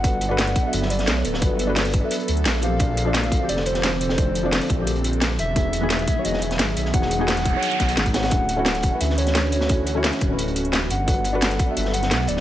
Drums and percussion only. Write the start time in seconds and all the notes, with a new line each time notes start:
0.04 kick, closed hi-hat
0.21 closed hi-hat
0.38 snare, closed hi-hat
0.47 closed hi-hat
0.56 kick, closed hi-hat
0.73 closed hi-hat
0.82 snare
0.90 closed hi-hat
0.99 snare, closed hi-hat
1.07 snare, closed hi-hat
1.25 closed hi-hat
1.34 snare
1.42 kick, closed hi-hat
1.59 closed hi-hat
1.76 snare, closed hi-hat, open hi-hat
1.85 closed hi-hat
1.94 kick, closed hi-hat
2.11 closed hi-hat
2.20 closed hi-hat
2.28 closed hi-hat
2.37 closed hi-hat
2.45 snare, closed hi-hat
2.62 closed hi-hat
2.80 kick, closed hi-hat
2.97 closed hi-hat
3.14 snare, closed hi-hat
3.23 closed hi-hat
3.32 kick, closed hi-hat
3.49 closed hi-hat
3.57 snare
3.66 closed hi-hat
3.74 snare, closed hi-hat
3.83 snare, closed hi-hat
4.01 closed hi-hat
4.09 snare
4.18 kick, closed hi-hat
4.35 closed hi-hat
4.52 snare, closed hi-hat, open hi-hat
4.62 closed hi-hat
4.69 kick, closed hi-hat
4.87 closed hi-hat
4.95 closed hi-hat
5.04 closed hi-hat
5.13 closed hi-hat
5.21 snare, closed hi-hat
5.39 closed hi-hat
5.56 kick, closed hi-hat
5.73 closed hi-hat
5.90 snare, closed hi-hat
5.99 closed hi-hat
6.08 kick, closed hi-hat
6.25 closed hi-hat
6.33 snare
6.42 closed hi-hat
6.51 snare, closed hi-hat
6.59 snare, closed hi-hat
6.77 closed hi-hat
6.85 snare
6.94 kick, closed hi-hat
7.02 snare
7.11 closed hi-hat
7.28 snare, closed hi-hat, open hi-hat
7.37 closed hi-hat
7.45 kick, closed hi-hat
7.62 closed hi-hat
7.71 closed hi-hat
7.80 kick, snare, closed hi-hat
7.89 closed hi-hat
7.97 snare, closed hi-hat
8.06 kick, closed hi-hat
8.14 snare, closed hi-hat
8.22 snare, closed hi-hat
8.31 kick, closed hi-hat
8.49 closed hi-hat
8.65 snare, closed hi-hat
8.75 closed hi-hat
8.83 kick, closed hi-hat
9.01 closed hi-hat
9.10 snare
9.18 closed hi-hat
9.27 snare, closed hi-hat
9.35 snare, closed hi-hat
9.52 closed hi-hat
9.61 snare
9.69 kick, closed hi-hat
9.87 closed hi-hat
10.04 snare, closed hi-hat, open hi-hat
10.13 closed hi-hat
10.21 kick, closed hi-hat
10.39 closed hi-hat
10.48 closed hi-hat
10.56 closed hi-hat
10.65 closed hi-hat
10.73 snare, closed hi-hat
10.90 closed hi-hat
11.08 kick, closed hi-hat
11.24 closed hi-hat
11.41 snare, closed hi-hat
11.51 closed hi-hat
11.59 kick, closed hi-hat
11.77 closed hi-hat
11.85 snare
11.93 closed hi-hat
12.03 snare, closed hi-hat
12.11 snare, closed hi-hat
12.27 closed hi-hat
12.37 snare